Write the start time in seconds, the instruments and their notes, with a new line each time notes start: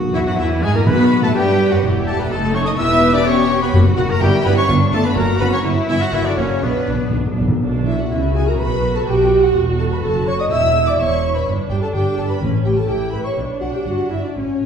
Already playing: cello section F#4
0.14 double bass section E2, viola section E3, french horn section E3, violin section E4 E5, oboe E4, flute E5
0.26 double bass section F#2, french horn section F#3, viola section F#3, violin section F#4 F#5, oboe F#4, flute F#5
0.38 double bass section E2, french horn section E3, viola section E3, cello section E4, oboe E4, violin section E4 E5, flute E5
0.63 double bass section G#2, french horn section G#3, viola section G#3, violin section G#4 G#5, oboe G#4, flute G#5
0.74 double bass section A#2, french horn section A#3, viola section A#3, violin section A#4 A#5, oboe A#4, flute A#5
0.86 timpani B2, double bass section B2, french horn section B3, viola section B3, cello section F#4, oboe B4, violin section B4 B5, flute B5
1.21 double bass section A2, french horn section A3, viola section A3, oboe A4, violin section A4 A5, flute A5
1.34 double bass section G2, french horn section G3, viola section G3, oboe G4, violin section G4 G5, cello section B4, flute G5
1.70 double bass section F#2, french horn section F#3, viola section F#3, violin section F#4 F#5, oboe F#4, flute F#5
1.82 double bass section E1, viola section G3 E4, cello section G4
2.06 french horn section A3, violin section A4 A5, oboe A4, flute A5
2.18 french horn section B3, violin section B4 B5, oboe B4, flute B5
2.30 double bass section F#1, french horn section A3, viola section A3 D#4, violin section A4 A5, cello section A4, oboe A4, flute A5
2.53 french horn section C#4, violin section C#5 C#6, oboe C#5, flute C#6
2.65 french horn section D#4, violin section D#5 D#6, oboe D#5, flute D#6
2.77 double bass section E1, viola section B3 G4, french horn section E4, cello section B4, violin section E5 E6, oboe E5, flute E6
3.13 french horn section D4, violin section D5 D6, oboe D5, flute D6
3.25 french horn section C#4, cello section G4, violin section C#5 C#6, oboe C#5, flute C#6
3.61 french horn section B3, violin section B4 B5, oboe B4, flute B5
3.73 double bass section F#1, timpani F#2, viola section A#3 F#4, cello section F#4
3.97 double bass section F#1, french horn section F#3, viola section A#3 F#4, violin section F#4 F#5, oboe F#4, flute F#5
4.09 french horn section A#3, violin section A#4 A#5, oboe A#4, flute A#5
4.21 double bass section G1, french horn section G3, viola section B3 E4, cello section E4, violin section G4 G5, oboe G4, flute G5
4.44 double bass section G1, viola section B3 E4, french horn section B3, violin section B4 B5, oboe B4, flute B5
4.57 french horn section C#4, violin section C#5 C#6, oboe C#5, flute C#6
4.68 double bass section G1, viola section B3 F4, cello section D4
4.92 double bass section G1, french horn section A3, viola section B3 F4, violin section A4 A5, oboe A4, flute A5
5.04 french horn section B3, violin section B4 B5, oboe B4, flute B5
5.16 double bass section F#1, french horn section A#3, viola section C#4 F#4, cello section F#4, violin section A#4 A#5, oboe A#4, flute A#5
5.40 double bass section F#1, french horn section B3, viola section C#4 F#4, violin section B4 B5, oboe B4, flute B5
5.52 french horn section C#4, violin section C#5 C#6, oboe C#5, flute C#6
5.64 double bass section G1, viola section B3 E4, cello section E4
5.88 double bass section G1, french horn section E3, viola section B3 E4, violin section E4 E5, oboe E4, flute E5
6.00 french horn section F#3, violin section F#4 F#5, oboe F#4, flute F#5
6.12 double bass section F#1, french horn section E3, viola section A#3 E4, violin section E4 E5, oboe E4, cello section F#4, flute E5
6.24 french horn section D3, oboe D4, violin section D4 D5, flute D5
6.36 double bass section F#1, french horn section C#3, viola section A#3 E4, violin section C#4 C#5, oboe C#4, flute C#5
6.62 double bass section B1, timpani B2, french horn section B2, oboe B3, viola section B3 D4, violin section B3 B4, cello section D4, flute B4
6.70 timpani B2
6.78 timpani B2
6.86 double bass section B1, timpani B2, viola section B3 D4
6.94 timpani B2
7.01 timpani B2
7.09 double bass section B1, timpani B2, viola section B3 D4
7.17 timpani B2
7.25 timpani B2
7.32 timpani B2
7.37 double bass section B1, timpani B2, viola section B3 D4
7.48 timpani B2
7.62 double bass section B1, cello section B2, viola section D4
7.86 clarinet E4, french horn section E4, flute E5, violin section E5
7.98 clarinet F#4, french horn section F#4, flute F#5, violin section F#5
8.10 double bass section C#2, cello section C#3, clarinet E4, french horn section E4, viola section F#4, flute E5, violin section E5
8.35 clarinet G#4, french horn section G#4, violin section G#5, flute G#5
8.46 clarinet A#4, french horn section A#4, flute A#5, violin section A#5
8.59 double bass section B1, cello section B2, clarinet B4, french horn section B4, violin section B5, flute B5
8.95 clarinet A4, french horn section A4, violin section A5, flute A5
9.07 double bass section B1, cello section B2, clarinet G4, french horn section G4, violin section G5, flute G5
9.43 clarinet F#4, french horn section F#4, violin section F#5, flute F#5
9.56 double bass section E1, cello section E2
9.79 french horn section A4, clarinet A4, violin section A5, flute A5
9.91 clarinet B4, french horn section B4, violin section B5, flute B5
10.03 double bass section F#1, cello section F#2, clarinet A4, french horn section A4, violin section A5, flute A5
10.27 clarinet C#5, french horn section C#5, violin section C#6, flute C#6
10.39 clarinet D#5, french horn section D#5, violin section D#6, flute D#6
10.50 double bass section E1, cello section E2, viola section E4, clarinet E5, french horn section E5, violin section E6, flute E6
10.87 clarinet D5, french horn section D5, violin section D6, flute D6
10.98 double bass section E1, cello section E2, clarinet C#5, french horn section C#5, violin section C#6, flute C#6
11.35 clarinet B4, french horn section B4, violin section B5, flute B5
11.47 double bass section G1, cello section G2, viola section D4
11.70 double bass section G1, cello section G2, clarinet G4, french horn section G4, violin section G5, flute G5
11.82 clarinet A4, french horn section A4, violin section A5, flute A5
11.93 double bass section G1, cello section G2, clarinet G4, french horn section G4, flute G5, violin section G5
12.17 double bass section G1, cello section G2, clarinet A4, french horn section A4, flute A5, violin section A5
12.29 clarinet B4, french horn section B4, violin section B5, flute B5
12.42 double bass section A1, timpani A2, cello section A2, viola section C#4
12.65 double bass section A1, cello section A2, french horn section G4, clarinet G4, flute G5, violin section G5
12.76 clarinet A4, french horn section A4, flute A5, violin section A5
12.88 double bass section A1, cello section A2, viola section E4, clarinet G4, french horn section G4, flute G5, violin section G5
13.12 double bass section A1, cello section A2, french horn section B4, clarinet B4, violin section B5, flute B5
13.24 clarinet C#5, french horn section C#5, flute C#6, violin section C#6
13.37 double bass section B1, cello section B2, viola section D4
13.60 double bass section B1, cello section B2, clarinet F#4, french horn section F#4, flute F#5, violin section F#5
13.73 clarinet G4, french horn section G4, flute G5, violin section G5
13.85 double bass section G1, cello section G2, clarinet F#4, french horn section F#4, flute F#5, violin section F#5
14.10 double bass section G1, cello section G2, clarinet E4, french horn section E4, flute E5, violin section E5
14.23 clarinet D4, french horn section D4, violin section D5, flute D5
14.35 double bass section A1, cello section A2, clarinet C#4, french horn section C#4, viola section C#4, flute C#5, violin section C#5
14.61 double bass section A1, cello section A2